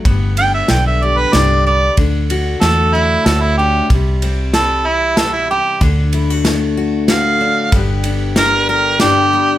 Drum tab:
RD |xxx-x-|xxx-x-|xxx-x-|xxx-x-|
SD |--o-o-|--o-o-|--o-o-|--o-o-|
BD |o-----|o-----|o-----|o-----|

RD |xxx-x-|
SD |--o-o-|
BD |o-----|